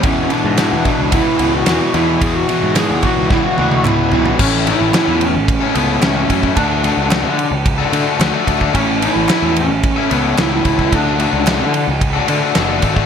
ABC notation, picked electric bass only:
X:1
M:4/4
L:1/16
Q:1/4=110
K:A
V:1 name="Picked electric bass" clef=bass
E,,2 z G,,2 E,, z C,,2 z C,,2 E,, z E,,2 | E,,2 z G,,2 E,, z C,,2 z D,,2 C,,2 B,,,2 | A,,,3 A,,, z E,,2 A,,,2 z C,,2 C,,2 F,,2 | D,,3 C,,2 D,2 C,,3 D, z D,, z D,,2 |
A,,,3 A,,, z E,,2 A,,,2 z C,,2 C,,2 C,,2 | D,,3 C,,2 D,2 C,,3 D, z F,,,2 G,,,2 |]